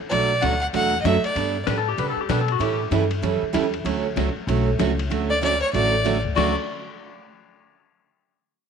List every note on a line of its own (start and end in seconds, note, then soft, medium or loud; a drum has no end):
0.09 0.41 B1 medium
0.09 0.31 B2 medium
0.09 0.31 F#3 medium
0.09 0.31 A3 medium
0.09 0.32 D4 medium
0.09 0.32 F#4 medium
0.09 0.43 D5 loud
0.09 ride medium
0.41 0.73 D2 medium
0.41 0.53 B2 medium
0.41 0.53 F#3 medium
0.41 0.53 A3 medium
0.41 0.54 D4 medium
0.41 0.54 F#4 medium
0.41 0.60 F#5 loud
0.41 snare medium
0.41 hi-hat pedal medium
0.41 ride medium
0.61 0.66 F#5 medium
0.73 1.04 E2 medium
0.73 0.93 B2 medium
0.73 0.94 F#3 medium
0.73 0.94 A3 medium
0.73 0.94 D4 medium
0.73 0.94 F#4 medium
0.73 1.00 F#5 loud
0.73 ride medium
1.01 1.22 F#2 medium
1.01 1.16 B2 medium
1.01 1.07 D#5 medium
1.01 1.24 E5 medium
1.01 snare medium
1.01 hi-hat pedal medium
1.01 ride medium
1.05 1.16 F#3 medium
1.05 1.16 A3 medium
1.05 1.16 D4 medium
1.05 1.16 F#4 medium
1.24 1.65 D5 medium
1.24 muted upright bass stroke soft
1.24 ride soft
1.35 1.66 G2 medium
1.35 1.56 G3 medium
1.35 1.56 B3 medium
1.35 1.57 D4 medium
1.35 1.57 A4 medium
1.35 ride medium
1.67 1.97 A2 medium
1.67 1.78 G3 medium
1.67 1.78 B3 medium
1.67 1.78 D4 medium
1.67 1.78 A4 medium
1.67 1.77 B4 medium
1.67 snare medium
1.67 hi-hat pedal medium
1.67 ride medium
1.78 1.88 A4 medium
1.88 1.98 G4 medium
1.98 2.16 C#3 medium
1.98 2.18 G3 medium
1.98 2.18 B3 medium
1.98 2.19 D4 medium
1.98 2.19 A4 medium
1.98 2.09 B4 medium
1.98 ride medium
2.10 2.19 A4 medium
2.16 muted upright bass stroke soft
2.21 2.30 G4 medium
2.29 2.59 B2 medium
2.29 2.40 G3 medium
2.29 2.40 B3 medium
2.29 2.40 D4 medium
2.29 2.41 A4 medium
2.29 2.39 B4 loud
2.29 snare medium
2.29 hi-hat pedal medium
2.29 ride medium
2.41 2.51 A4 medium
2.48 2.61 F#4 medium
2.48 ride soft
2.59 2.90 A2 medium
2.59 2.80 E3 medium
2.59 2.80 G3 medium
2.59 2.80 C#4 medium
2.59 2.81 E4 medium
2.59 2.81 A4 medium
2.59 ride medium
2.63 2.80 G4 loud
2.91 3.22 G2 medium
2.91 3.02 E3 medium
2.91 3.03 G3 medium
2.91 3.03 C#4 medium
2.91 3.03 E4 medium
2.91 3.03 A4 medium
2.91 snare medium
2.91 hi-hat pedal medium
2.91 ride medium
3.11 ride soft
3.22 3.40 F#2 medium
3.22 3.43 E3 medium
3.22 3.43 G3 medium
3.22 3.43 C#4 medium
3.22 3.43 E4 medium
3.22 3.44 A4 medium
3.22 ride medium
3.42 muted upright bass stroke soft
3.53 3.84 E2 medium
3.53 3.65 E3 medium
3.53 3.65 G3 medium
3.53 3.65 C#4 medium
3.53 3.65 E4 medium
3.53 3.65 A4 medium
3.53 snare medium
3.53 hi-hat pedal medium
3.53 ride medium
3.74 ride soft
3.85 4.15 D2 medium
3.85 4.05 D3 medium
3.85 4.05 F#3 medium
3.85 4.06 A3 medium
3.85 4.06 C#4 medium
3.85 4.06 F#4 medium
3.85 ride medium
4.16 4.34 C#2 medium
4.16 4.28 D3 medium
4.16 4.28 F#3 medium
4.16 4.28 A3 medium
4.16 4.28 C#4 medium
4.16 4.28 F#4 medium
4.16 snare medium
4.16 hi-hat pedal soft
4.16 ride medium
4.35 muted upright bass stroke soft
4.47 4.78 B1 loud
4.47 4.68 D3 medium
4.47 4.69 F#3 medium
4.47 4.69 A3 medium
4.47 4.69 C#4 medium
4.47 4.69 F#4 medium
4.47 ride medium
4.79 5.09 C#2 medium
4.79 4.90 D3 medium
4.79 4.90 F#3 medium
4.79 4.91 A3 medium
4.79 4.91 C#4 medium
4.79 4.91 F#4 medium
4.79 snare medium
4.79 hi-hat pedal medium
4.79 ride medium
4.99 ride medium
5.10 5.61 D2 medium
5.10 5.31 D3 medium
5.10 5.31 F#3 medium
5.10 5.31 A3 medium
5.10 5.31 C#4 medium
5.10 5.32 F#4 medium
5.10 ride medium
5.30 5.41 D5 medium
5.41 5.53 D3 medium
5.41 5.53 F#3 medium
5.41 5.54 A3 medium
5.41 5.54 C#4 medium
5.41 5.54 F#4 medium
5.41 5.61 D5 loud
5.41 hi-hat pedal medium
5.41 ride medium
5.62 5.72 C#5 medium
5.73 6.24 A1 loud
5.73 5.94 D3 medium
5.73 5.94 F#3 medium
5.73 5.94 A3 medium
5.73 5.94 C#4 medium
5.73 5.95 F#4 medium
5.73 6.20 D5 loud
5.73 ride medium
6.04 6.16 D3 medium
6.04 6.16 F#3 medium
6.04 6.16 A3 medium
6.04 6.16 C#4 medium
6.04 6.16 F#4 medium
6.04 hi-hat pedal medium
6.04 ride medium
6.25 kick medium
6.35 6.54 D2 medium
6.35 6.52 D3 medium
6.35 6.52 F#3 medium
6.35 6.52 A3 medium
6.35 6.52 C#4 medium
6.35 6.54 F#4 medium
6.35 6.53 F#4 medium
6.35 6.54 D5 medium
6.35 snare medium
6.35 crash medium